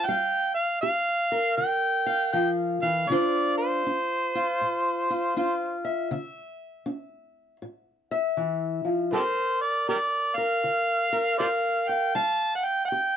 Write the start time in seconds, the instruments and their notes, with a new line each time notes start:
Already playing: steel-string acoustic guitar F4
0.05 steel-string acoustic guitar G3 F5, harmonica G5
0.54 harmonica F5
0.81 steel-string acoustic guitar G4, harmonica F5
1.32 steel-string acoustic guitar A#4
1.57 steel-string acoustic guitar D3, harmonica G5
2.06 steel-string acoustic guitar F5
2.33 steel-string acoustic guitar F3, harmonica G5
2.82 steel-string acoustic guitar E3, harmonica F5
3.09 steel-string acoustic guitar D3 D4 F4 C5, harmonica D5
3.58 harmonica C5
3.87 steel-string acoustic guitar D4
4.35 steel-string acoustic guitar F4
4.61 steel-string acoustic guitar A2
5.10 steel-string acoustic guitar F4
5.36 steel-string acoustic guitar D4 F4
5.85 steel-string acoustic guitar E5
6.11 steel-string acoustic guitar D3 E5
6.86 steel-string acoustic guitar D4
7.62 steel-string acoustic guitar A2
8.11 steel-string acoustic guitar E5
8.37 steel-string acoustic guitar E3
8.85 steel-string acoustic guitar F3
9.12 steel-string acoustic guitar G3 A#4, harmonica G4 A4 C5
9.61 harmonica D5
9.89 steel-string acoustic guitar G4, harmonica G4 A#4 D5
10.36 steel-string acoustic guitar A#4, harmonica F5
10.64 steel-string acoustic guitar D3
11.13 steel-string acoustic guitar A#4
11.39 steel-string acoustic guitar G4 A#4, harmonica C5 D5 F5
11.88 steel-string acoustic guitar F5, harmonica G5
12.15 steel-string acoustic guitar G3 F5, harmonica A5
12.55 harmonica F#5
12.65 harmonica G5
12.85 harmonica F#5 G5
12.92 steel-string acoustic guitar G4